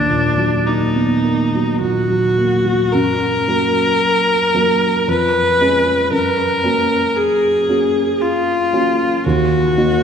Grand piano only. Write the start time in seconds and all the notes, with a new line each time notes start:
Already playing: D#2 A#3
0.09 A#2
0.38 F#3
0.66 A#3
0.96 B3
1.25 A#3
1.54 F#3
1.81 A#2
2.10 F#3
2.38 A#3
2.66 F#3
2.94 F#2
3.48 F#3 A#3 A#4
4.54 F#3 A#3 A#4
5.08 F2
5.61 G#3 C#4 G#4
6.11 F#2
6.64 A#3 C#4 F#4
7.69 A#3 C#4 F#4
8.73 A#3 C#4 F#4
9.26 D#2
9.77 A#3 D#4 F#4